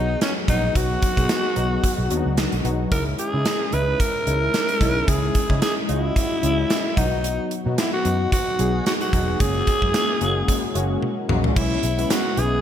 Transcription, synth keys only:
Already playing: F#3 B3 D#4 F#4 G#4
0.48 F#3 B3 D#4 F#4
0.75 F#3 B3 D#4 F#4
1.17 F#3 B3 D#4 G#4
1.56 F#3 B3 D#4 F#4
2.10 F#3 B3 D4 F#4
2.17 D#4
2.64 F#3 B3 D#4 F#4
2.91 G#3 C#4 D#4 E4
3.33 G#3 C#4 D#4 E4
3.73 G#3 C#4 D#4 E4
4.26 G#3 C#4 D#4 E4
4.80 G#3 C#4 D#4 E4
5.08 G#3 C#4 D#4 E4
5.50 G#3 C#4 D#4 E4
5.89 G#3 C#4 F4 D#5
5.96 F#4
6.43 G#3 C#4 E4 D#5
6.97 F#3 B3 D#4 F#4
7.65 F#3 B3 D#4 F#4
8.04 F#3 B3 D#4 F#4
8.59 F#3 B3 D#4 G#4
9.13 F#3 B3 D#4 G#4
9.40 G#3 A#3 C#4 F#4
9.81 G#3 A#3 C#4 E4
10.21 G#3 A#3 C#4 F#4
10.75 G#3 A#3 C#4 F#4
11.29 G#3 A#3 C#4 F#4
11.56 G#3 B3 C#4 E4
11.98 G#3 B3 C#4 E4
12.37 G#3 B3 C#4 E4

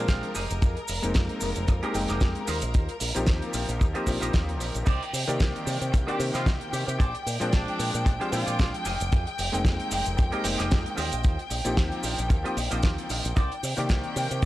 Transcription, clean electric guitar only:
Already playing: G4 G#4 C5
0.09 F5
0.35 G4 G#4 A#4 D#5 G#5
0.88 muted clean electric guitar stroke
1.41 muted clean electric guitar stroke
1.68 muted clean electric guitar stroke
1.83 G4 G#4 A#4 D#5
2.09 G4 G#4 A#4 D#5
2.47 F4 G4 C5 D#5
3.00 muted clean electric guitar stroke
3.53 muted clean electric guitar stroke
3.80 muted clean electric guitar stroke
3.94 F4 G4 C5 D#5
4.21 F4 G4 C5 D#5
4.59 muted clean electric guitar stroke
4.86 D#4 A#4 C5 D5
5.13 muted clean electric guitar stroke
5.66 muted clean electric guitar stroke
5.92 muted clean electric guitar stroke
6.07 D#4 A#4 C5 D5
6.34 D#4 A#4 C5 D#5
6.72 muted clean electric guitar stroke
6.99 G4 G#4 C5 D5
7.25 muted clean electric guitar stroke
7.79 muted clean electric guitar stroke
8.05 muted clean electric guitar stroke
8.20 G4 G#4 C5 F5
8.46 G4 G#4 C5 D5
8.85 G4 G#4 A#4 D#5
9.38 muted clean electric guitar stroke
9.91 muted clean electric guitar stroke
10.17 muted clean electric guitar stroke
10.32 G4 G#4 A#4 D#5
10.58 G4 G#4 A#4 D#5
10.96 F4 G4 C5 D#5
11.50 muted clean electric guitar stroke
12.03 muted clean electric guitar stroke
12.30 muted clean electric guitar stroke
12.44 F4 G4 C5 D#5
12.71 F4 G4 C5 D#5
13.10 muted clean electric guitar stroke
13.36 D#4 A#4 C5 D5
13.63 muted clean electric guitar stroke
14.16 muted clean electric guitar stroke

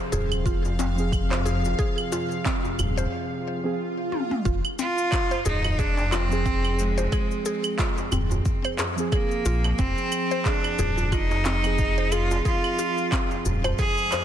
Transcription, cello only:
4.79 F4
5.46 D#4
5.80 D4
6.13 C4
6.80 G#3
9.13 A#3
9.80 C4
10.46 D4
11.13 D#4
12.13 F4
12.46 F4
13.79 G#4

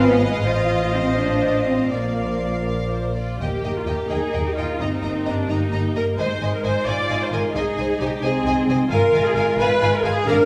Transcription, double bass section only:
Already playing: G#1
0.43 A1
1.92 A#1
3.41 D#2
3.63 D#2
3.86 D#2
4.10 D#2
4.34 D#2
4.58 D#2
4.81 G1
5.03 G1
5.27 G1
5.49 G1
5.73 G1
5.95 G1
6.18 G#1
6.41 G#1
6.64 G#1
6.87 G#1
7.09 G#1
7.32 G#1
7.54 C2
7.77 C2
8.00 C2
8.22 C2
8.45 C2
8.68 C2
8.90 G#1
9.13 G#1
9.35 G#1
9.58 G#1
9.81 G#1
10.04 G#1
10.27 G#1

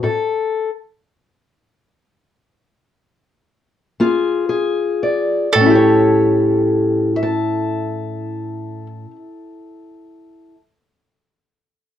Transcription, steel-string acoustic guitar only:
0.03 A2 A4
4.00 A#3 F4 G#4
4.49 G#4
5.03 D5
5.55 A2
5.60 C#4
5.66 E4
5.70 G4
5.75 C#5
7.16 E5
7.23 A5

